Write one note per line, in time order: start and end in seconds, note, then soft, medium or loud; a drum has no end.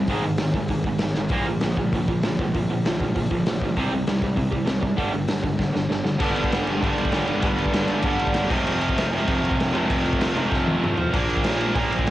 0.07 0.21 G#1 medium
0.07 0.23 G#2 medium
0.07 0.23 D#3 medium
0.07 0.24 G#3 medium
0.07 kick medium
0.07 open hi-hat medium
0.22 0.35 G#1 medium
0.22 0.38 G#2 medium
0.22 0.38 D#3 medium
0.38 0.51 G#1 medium
0.38 0.54 G#2 medium
0.38 0.54 D#3 medium
0.38 snare loud
0.38 open hi-hat medium
0.54 0.66 G#1 medium
0.54 0.69 G#2 medium
0.54 0.69 D#3 medium
0.54 kick medium
0.68 0.82 G#1 medium
0.68 0.84 G#2 medium
0.68 0.84 D#3 medium
0.68 kick loud
0.68 open hi-hat medium
0.84 0.97 G#1 medium
0.84 1.00 G#2 medium
0.84 1.00 D#3 medium
0.84 kick medium
0.99 1.12 G#1 medium
0.99 1.15 G#2 medium
0.99 1.15 D#3 medium
0.99 snare loud
0.99 open hi-hat medium
1.14 1.27 G#1 medium
1.14 1.30 G#2 medium
1.14 1.31 D#3 medium
1.14 snare medium
1.29 1.43 A#1 medium
1.29 1.46 A#2 medium
1.29 1.44 D3 medium
1.29 1.46 F3 medium
1.29 1.46 A#3 medium
1.29 kick loud
1.29 open hi-hat medium
1.45 1.59 A#1 medium
1.45 1.61 A#2 medium
1.45 1.60 D3 medium
1.45 1.61 F3 medium
1.60 1.74 A#1 medium
1.60 1.76 A#2 medium
1.60 1.75 D3 medium
1.60 1.76 F3 medium
1.60 snare loud
1.60 open hi-hat medium
1.77 1.89 A#1 medium
1.77 1.91 A#2 medium
1.77 1.91 D3 medium
1.77 1.91 F3 medium
1.77 kick medium
1.93 2.05 A#1 medium
1.93 2.07 A#2 medium
1.93 2.06 D3 medium
1.93 2.07 F3 medium
1.93 kick medium
1.93 open hi-hat medium
2.07 2.20 A#1 medium
2.07 2.22 A#2 medium
2.07 2.21 D3 medium
2.07 2.22 F3 medium
2.07 kick medium
2.23 2.35 A#1 medium
2.23 2.37 A#2 medium
2.23 2.37 D3 medium
2.23 2.37 F3 medium
2.23 snare loud
2.23 open hi-hat medium
2.39 2.51 A#1 medium
2.39 2.53 A#2 medium
2.39 2.53 D3 medium
2.39 2.53 F3 medium
2.39 kick medium
2.55 2.66 A#1 loud
2.55 2.68 A#2 medium
2.55 2.68 D3 medium
2.55 2.68 F3 medium
2.55 kick loud
2.55 open hi-hat medium
2.70 2.82 A#1 medium
2.70 2.83 A#2 medium
2.70 2.83 D3 medium
2.70 2.83 F3 medium
2.85 2.97 A#1 medium
2.85 2.99 A#2 medium
2.85 2.98 D3 medium
2.85 2.99 F3 medium
2.85 snare loud
2.85 open hi-hat medium
3.00 3.12 A#1 medium
3.00 3.14 A#2 medium
3.00 3.13 D3 medium
3.00 3.14 F3 medium
3.00 kick medium
3.15 3.28 A#1 medium
3.15 3.29 A#2 medium
3.15 3.29 D3 medium
3.15 3.29 F3 medium
3.15 kick loud
3.15 open hi-hat medium
3.31 3.43 A#1 medium
3.31 3.44 A#2 medium
3.31 3.44 D3 medium
3.31 3.45 F3 medium
3.31 kick medium
3.45 3.57 A#1 medium
3.45 3.60 A#2 medium
3.45 3.60 D3 medium
3.45 3.61 F3 medium
3.45 snare loud
3.45 open hi-hat medium
3.61 3.73 A#1 medium
3.61 3.76 A#2 medium
3.61 3.75 D3 medium
3.61 3.76 F3 medium
3.61 kick medium
3.77 3.89 C2 loud
3.77 3.91 C3 medium
3.77 3.91 G3 medium
3.77 3.91 C4 loud
3.77 kick loud
3.77 open hi-hat medium
3.92 4.04 C2 medium
3.92 4.06 C3 medium
3.92 4.06 G3 medium
4.07 4.19 C2 loud
4.07 4.21 C3 medium
4.07 4.21 G3 medium
4.07 snare loud
4.07 open hi-hat medium
4.22 4.35 C2 medium
4.22 4.35 C3 medium
4.22 4.36 G3 medium
4.22 kick medium
4.36 4.49 C2 medium
4.36 4.50 C3 medium
4.36 4.50 G3 medium
4.36 kick loud
4.36 open hi-hat medium
4.51 4.65 C2 medium
4.51 4.64 C3 medium
4.51 4.65 G3 medium
4.51 kick medium
4.65 4.80 C2 medium
4.65 4.80 C3 medium
4.65 4.81 G3 medium
4.65 snare loud
4.65 open hi-hat medium
4.82 4.95 C2 medium
4.82 4.96 C3 medium
4.82 4.96 G3 medium
4.82 kick medium
4.97 5.10 G1 loud
4.97 5.11 G2 medium
4.97 5.12 D3 loud
4.97 5.12 G3 loud
4.97 kick loud
4.97 open hi-hat medium
5.12 5.26 G1 medium
5.12 5.27 G2 medium
5.12 5.27 D3 medium
5.28 5.41 G1 medium
5.28 5.42 G2 medium
5.28 5.42 D3 medium
5.28 snare loud
5.28 open hi-hat medium
5.43 5.56 G1 medium
5.43 5.57 G2 medium
5.43 5.57 D3 medium
5.43 kick medium
5.59 5.71 G1 medium
5.59 5.72 G2 medium
5.59 5.73 D3 medium
5.59 kick loud
5.59 snare medium
5.73 5.87 G1 medium
5.73 5.88 G2 medium
5.73 5.88 D3 medium
5.73 snare medium
5.89 6.02 G1 medium
5.89 6.02 G2 medium
5.89 6.03 D3 medium
5.89 snare medium
6.04 6.18 G1 medium
6.04 6.17 G2 medium
6.04 6.18 D3 medium
6.04 snare medium
6.18 6.47 G1 loud
6.18 6.80 G2 medium
6.18 6.50 G2 medium
6.18 6.50 D3 medium
6.18 6.81 D3 loud
6.18 6.50 G3 medium
6.18 6.81 G3 medium
6.18 6.51 B3 loud
6.18 7.42 B3 loud
6.18 6.51 D4 loud
6.18 7.43 D4 loud
6.18 kick loud
6.18 crash loud
6.18 crash medium
6.36 crash medium
6.44 kick medium
6.51 6.65 G1 loud
6.51 6.65 G2 medium
6.51 6.65 D3 medium
6.51 6.65 G3 medium
6.51 6.65 B3 loud
6.51 6.64 D4 loud
6.51 snare loud
6.51 crash medium
6.65 6.79 G1 medium
6.65 6.80 G2 medium
6.65 6.80 D3 medium
6.65 6.81 G3 medium
6.65 6.81 B3 medium
6.65 6.81 D4 medium
6.65 crash medium
6.81 6.95 G1 medium
6.81 7.40 G2 medium
6.81 7.09 G2 loud
6.81 7.10 D3 loud
6.81 7.42 D3 medium
6.81 7.10 G3 loud
6.81 7.43 G3 medium
6.81 7.10 B3 loud
6.81 7.11 D4 loud
6.81 kick loud
6.81 crash medium
6.96 7.09 G1 medium
6.96 crash medium
7.05 kick medium
7.10 7.26 G1 loud
7.10 7.27 G2 medium
7.10 7.27 D3 medium
7.10 7.26 G3 medium
7.10 7.25 B3 medium
7.10 7.25 D4 loud
7.10 snare loud
7.10 crash medium
7.26 7.41 G1 loud
7.26 7.41 G2 medium
7.26 7.40 D3 medium
7.26 7.41 G3 medium
7.26 7.41 B3 medium
7.26 7.42 D4 medium
7.26 crash medium
7.41 7.56 G1 loud
7.41 8.01 G2 medium
7.41 7.70 G2 loud
7.41 7.71 D3 medium
7.41 8.03 D3 loud
7.41 7.71 G3 medium
7.41 8.04 G3 loud
7.41 7.72 B3 loud
7.41 8.50 B3 loud
7.41 7.72 D4 medium
7.41 8.50 D4 loud
7.41 kick loud
7.41 crash medium
7.58 7.71 G1 loud
7.58 crash medium
7.66 kick medium
7.72 7.87 G1 loud
7.72 7.87 G2 medium
7.72 7.86 D3 loud
7.72 7.86 G3 loud
7.72 7.86 B3 medium
7.72 7.86 D4 medium
7.72 snare loud
7.72 crash medium
7.87 8.02 G1 medium
7.87 8.01 G2 medium
7.87 8.02 D3 medium
7.87 8.02 G3 medium
7.87 8.03 B3 medium
7.87 8.03 D4 medium
7.87 crash medium
8.02 8.17 G1 medium
8.02 8.31 G2 loud
8.02 8.48 G2 medium
8.02 8.32 D3 loud
8.02 8.49 D3 medium
8.02 8.33 G3 loud
8.02 8.33 B3 loud
8.02 8.34 D4 loud
8.02 kick loud
8.02 crash medium
8.06 8.50 G3 medium
8.19 8.33 G1 medium
8.19 crash medium
8.27 kick medium
8.33 8.48 G1 loud
8.33 8.48 G2 medium
8.33 8.49 D3 medium
8.33 8.49 G3 medium
8.33 8.49 B3 loud
8.33 8.49 D4 medium
8.33 snare loud
8.33 crash medium
8.48 8.64 F1 loud
8.48 8.64 F2 medium
8.48 9.15 F2 medium
8.48 8.64 C3 loud
8.48 9.11 C3 loud
8.48 8.64 F3 loud
8.48 8.64 A3 loud
8.48 9.73 A3 loud
8.48 8.63 C4 loud
8.48 9.73 C4 loud
8.48 kick loud
8.48 crash loud
8.53 9.11 F3 loud
8.64 8.93 F1 loud
8.64 8.95 F2 medium
8.64 8.94 C3 medium
8.64 8.94 F3 medium
8.64 8.94 A3 loud
8.64 8.93 C4 loud
8.64 crash medium
8.81 crash medium
8.89 kick medium
8.94 9.10 F1 loud
8.94 9.08 F2 medium
8.94 9.09 C3 medium
8.94 9.10 F3 loud
8.94 9.10 A3 loud
8.94 9.10 C4 medium
8.94 crash medium
8.98 snare loud
9.10 9.25 F1 medium
9.10 9.27 F2 medium
9.10 9.26 C3 medium
9.10 9.73 C3 medium
9.10 9.27 F3 medium
9.10 9.76 F3 medium
9.10 9.26 A3 medium
9.10 9.26 C4 medium
9.10 crash medium
9.15 9.72 F2 medium
9.27 9.41 F1 medium
9.27 9.59 F2 loud
9.27 9.58 C3 loud
9.27 9.58 F3 medium
9.27 9.57 A3 loud
9.27 9.56 C4 loud
9.27 kick loud
9.27 crash medium
9.41 9.55 F1 medium
9.41 crash medium
9.51 kick loud
9.58 9.71 F1 loud
9.58 9.72 F2 medium
9.58 9.73 C3 medium
9.58 9.73 F3 medium
9.58 9.73 A3 medium
9.58 9.73 C4 loud
9.58 snare loud
9.58 crash medium
9.73 9.87 F1 loud
9.73 9.89 F2 medium
9.73 10.34 F2 medium
9.73 9.89 C3 medium
9.73 10.35 C3 loud
9.73 9.89 F3 medium
9.73 10.35 F3 loud
9.73 10.96 A3 loud
9.73 9.88 A3 medium
9.73 10.96 C4 loud
9.73 9.87 C4 loud
9.73 crash medium
9.89 10.03 F1 loud
9.89 10.20 F2 medium
9.89 10.20 C3 medium
9.89 10.20 F3 medium
9.89 10.19 A3 medium
9.89 10.19 C4 loud
9.89 kick loud
9.89 crash medium
10.04 10.18 F1 medium
10.04 crash medium
10.13 kick medium
10.20 10.33 F1 loud
10.20 10.33 F2 medium
10.20 10.34 C3 medium
10.20 10.35 F3 medium
10.20 10.34 A3 medium
10.20 10.35 C4 loud
10.20 snare loud
10.20 crash medium
10.34 10.48 F1 medium
10.34 10.50 F2 medium
10.34 10.97 F2 medium
10.34 10.50 C3 medium
10.34 10.97 C3 medium
10.34 11.15 F3 medium
10.34 10.51 F3 medium
10.34 10.49 A3 loud
10.34 10.48 C4 medium
10.34 crash medium
10.49 10.65 F1 medium
10.49 10.81 F2 loud
10.49 10.81 C3 loud
10.49 10.81 F3 loud
10.49 10.80 A3 medium
10.49 10.80 C4 loud
10.49 kick loud
10.49 snare medium
10.66 10.79 F1 medium
10.66 high tom medium
10.81 10.95 F1 loud
10.81 10.95 F2 medium
10.81 10.95 C3 medium
10.81 10.96 F3 medium
10.81 10.96 A3 medium
10.81 10.96 C4 medium
10.81 mid tom medium
10.96 11.11 F1 medium
10.96 11.11 F2 medium
10.96 11.10 C3 medium
10.96 11.10 F3 medium
10.96 11.10 A3 medium
10.96 11.10 C4 medium
10.96 floor tom medium
11.10 11.40 A#1 loud
11.10 11.41 A#2 medium
11.10 11.73 A#2 medium
11.10 11.42 F3 medium
11.10 11.42 A#3 loud
11.10 11.42 D4 loud
11.10 kick loud
11.10 crash medium
11.14 11.76 F3 medium
11.14 11.75 A#3 medium
11.14 12.10 D4 loud
11.30 crash medium
11.37 kick medium
11.43 11.57 A#1 loud
11.43 11.58 A#2 medium
11.43 11.59 F3 medium
11.43 11.58 A#3 loud
11.43 11.57 D4 medium
11.43 snare loud
11.43 crash medium
11.58 11.72 A#1 medium
11.58 11.72 A#2 medium
11.58 11.73 F3 medium
11.58 11.73 A#3 medium
11.58 11.73 D4 medium
11.58 crash medium
11.73 11.88 A#1 medium
11.73 12.04 A#2 loud
11.73 12.10 A#2 medium
11.73 12.05 F3 loud
11.73 12.10 F3 medium
11.73 12.05 A#3 loud
11.73 12.06 D4 loud
11.73 kick loud
11.73 crash medium
11.78 12.10 A#3 medium
11.91 12.03 A#1 medium
11.91 crash medium
11.99 kick medium
12.05 12.10 A#1 medium
12.05 12.10 A#2 medium
12.05 12.10 F3 medium
12.05 12.10 A#3 medium
12.05 12.10 D4 medium
12.05 crash medium